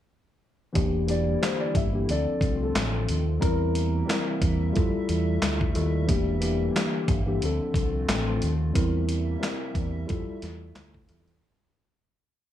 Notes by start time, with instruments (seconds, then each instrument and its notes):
0.73 fingered electric bass E1, analog synth pad D3 E3 G3 A#3 E4, tine electric piano E3 A#3 D4 G4, kick, closed hi-hat
1.07 tine electric piano E3 A#3 D4 G4, upright piano D5, closed hi-hat
1.42 upright piano C5, snare, clap, closed hi-hat
1.60 upright piano D5
1.75 fingered electric bass G1, upright piano E5, kick, closed hi-hat
1.92 tine electric piano E3 A#3 D4 G4
2.09 fingered electric bass D2, tine electric piano F3 C4 D4 A4, analog synth pad F3 A3 C4 F4, upright piano D5, closed hi-hat
2.27 muted fingered electric bass stroke
2.41 fingered electric bass C2, kick, closed hi-hat
2.63 upright piano A4
2.76 fingered electric bass A1, snare, clap, closed hi-hat
3.09 fingered electric bass D#2, closed hi-hat
3.40 fingered electric bass E2, analog synth pad C3 E3 G3 A#3 E5, tine electric piano G3 C4 E4 A#4, upright piano A#4, kick, closed hi-hat
3.75 closed hi-hat
4.06 tine electric piano G3 C4 E4 A#4, snare
4.10 clap, closed hi-hat
4.42 fingered electric bass E2, kick, closed hi-hat
4.72 analog synth pad C3 A3, tine electric piano G3 E4 F4 A4, closed hi-hat
4.77 fingered electric bass F2, kick
4.94 muted fingered electric bass stroke
5.09 fingered electric bass E2, closed hi-hat
5.42 fingered electric bass D2, snare, clap, closed hi-hat
5.61 kick
5.73 fingered electric bass D#2, tine electric piano G3 E4 F4 A4, closed hi-hat
6.06 fingered electric bass E1, tine electric piano E3 A#3 D4 G4, kick, closed hi-hat
6.10 analog synth pad D3 E3 A#3
6.40 tine electric piano E3 A#3 D4 G4, closed hi-hat
6.76 snare, clap, closed hi-hat
7.08 fingered electric bass G1, kick, closed hi-hat
7.26 tine electric piano E3 A#3 D4 G4
7.42 fingered electric bass D2, tine electric piano F3 C4 D4 A4, analog synth pad F3 A3 C4 F4, closed hi-hat
7.61 muted fingered electric bass stroke
7.74 fingered electric bass C2, kick, closed hi-hat
8.09 fingered electric bass A1, snare, clap, closed hi-hat
8.42 fingered electric bass D#2, closed hi-hat
8.73 fingered electric bass E2, analog synth pad C3 E3 G3 A#3 E5, tine electric piano G3 C4 E4 A#4, kick, closed hi-hat
9.09 closed hi-hat
9.39 tine electric piano G3 C4 E4 A#4
9.43 snare, clap, closed hi-hat
9.75 fingered electric bass E2, kick, closed hi-hat
10.06 tine electric piano G3 E4 F4 A4, analog synth pad A3, closed hi-hat
10.10 fingered electric bass F2, kick
10.28 muted fingered electric bass stroke
10.42 fingered electric bass E2, snare, closed hi-hat
10.76 fingered electric bass D2, snare, clap, closed hi-hat
10.94 kick
11.07 fingered electric bass E2, tine electric piano G3 E4 F4 A4, closed hi-hat
11.28 closed hi-hat